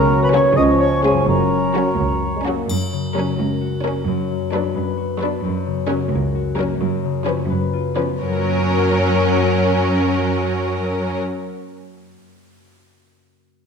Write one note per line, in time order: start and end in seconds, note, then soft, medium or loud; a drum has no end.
0.00 0.43 C#2 medium
0.00 0.38 C#3 medium
0.00 0.43 C#3 medium
0.00 0.53 F#3 medium
0.00 0.56 F#3 medium
0.00 0.53 A#3 soft
0.00 0.47 C#4 soft
0.00 1.90 C#4 medium
0.00 0.57 F#4 soft
0.00 0.20 A#4 medium
0.00 0.22 A#4 medium
0.00 0.54 C#5 medium
0.00 0.22 A#5 medium
0.23 0.33 B4 medium
0.23 0.28 B5 medium
0.33 0.52 F#3 medium
0.33 0.51 C#4 medium
0.33 0.51 F#4 soft
0.33 0.58 C#5 medium
0.33 0.56 C#5 medium
0.33 0.39 C#6 medium
0.40 1.21 C#3 soft
0.44 1.23 G#3 soft
0.48 1.18 C#4 soft
0.53 1.28 F4 soft
0.53 0.79 D#5 medium
0.53 0.63 D#6 medium
0.57 1.13 C#2 medium
0.57 1.13 C#3 medium
0.57 1.28 F3 soft
0.57 1.30 F3 medium
0.57 1.26 C#5 soft
0.57 0.79 D#5 medium
0.80 1.03 C#5 medium
0.80 1.03 C#6 medium
1.03 1.22 G#3 soft
1.03 1.22 C#4 soft
1.03 1.22 F4 soft
1.03 1.14 G#4 soft
1.03 1.27 G#4 soft
1.03 1.27 G#5 medium
1.10 2.63 F#2 soft
1.15 4.30 F#3 soft
1.19 3.15 C#4 soft
1.24 1.84 F#2 medium
1.24 1.92 F#3 soft
1.24 3.60 F#4 soft
1.24 2.44 A#4 soft
1.28 1.84 F#1 soft
1.28 2.46 F#3 soft
1.28 2.43 A#4 soft
1.28 2.44 C#5 soft
1.28 2.44 A#5 medium
1.75 1.93 F#3 soft
1.75 1.93 C#4 soft
1.75 1.92 F#4 soft
1.98 2.55 C#2 soft
1.98 2.31 F#3 soft
2.36 2.41 G#3 soft
2.45 2.63 F#3 soft
2.45 2.69 A#3 soft
2.45 2.64 C#4 soft
2.45 2.64 F#4 soft
2.69 4.06 F#2 soft
2.69 3.25 F#2 soft
2.69 triangle soft
2.92 4.09 C#3 soft
3.16 3.33 F#3 soft
3.16 4.09 C#4 soft
3.16 3.33 C#4 soft
3.16 3.33 A#4 soft
3.39 3.93 C#2 soft
3.39 4.09 A#4 soft
3.61 4.96 F#4 soft
3.84 4.02 F#3 soft
3.84 4.09 A#3 soft
3.84 4.01 C#4 soft
3.84 4.01 A#4 soft
4.07 4.61 F#2 medium
4.07 5.43 F#2 soft
4.31 6.82 F#3 soft
4.53 4.70 F#3 soft
4.53 5.45 D4 soft
4.53 4.70 D4 soft
4.53 4.70 B4 soft
4.75 5.29 F#2 medium
4.75 5.45 B4 soft
4.97 6.34 F#4 soft
5.20 5.37 F#3 soft
5.20 5.45 B3 soft
5.20 5.38 D4 soft
5.20 5.37 B4 soft
5.44 5.98 F#2 medium
5.44 6.79 F#2 soft
5.66 6.82 C#3 soft
5.88 6.06 F#3 soft
5.88 6.05 C#4 soft
5.88 7.26 C#4 soft
5.88 6.06 A#4 soft
6.12 6.66 C#2 medium
6.12 6.82 A#4 soft
6.35 6.83 F#4 soft
6.57 6.74 F#3 soft
6.57 6.82 A#3 soft
6.57 6.75 C#4 soft
6.57 6.75 A#4 soft
6.81 8.21 F#2 medium
6.81 7.36 F#2 medium
7.04 8.24 C#3 soft
7.27 7.44 F3 soft
7.27 8.42 C#4 soft
7.27 7.45 C#4 soft
7.27 7.45 B4 soft
7.50 8.07 F#2 medium
7.50 8.23 B4 soft
7.73 8.23 F4 soft
7.97 8.15 F3 soft
7.97 8.23 B3 soft
7.97 8.16 C#4 soft
7.97 8.15 B4 soft
8.21 11.19 F#2 soft
8.21 12.12 F#2 soft
8.21 11.18 F#3 soft
8.21 11.18 C#4 soft
8.21 11.18 A#4 soft
8.29 11.99 F#3 soft
8.36 11.58 A#3 soft
8.43 11.40 C#4 soft
8.50 11.47 F#4 soft
8.57 11.54 C#5 soft